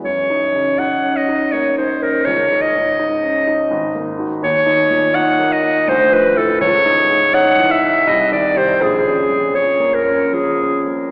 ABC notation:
X:1
M:3/4
L:1/8
Q:1/4=82
K:F#m
V:1 name="Clarinet"
c2 f ^d (3c =c ^A | c ^d4 z | [K:Bbm] d2 g e (3c _c =A | d2 g _f (3e =d c |
A2 d B A z |]
V:2 name="Grand piano"
(3F,, ^D C, (3D C D (3^A, D C | (3C,, ^D G,, (3D C D (3G,,, ^A, [DF] | [K:Bbm] (3E,, E B,, (3E B, E (3=D,, F, =E | (3D,, E A,, (3E _F, E (3C,, E, [E=G] |
(3B,,, D F,, (3D B, D (3F, D B, |]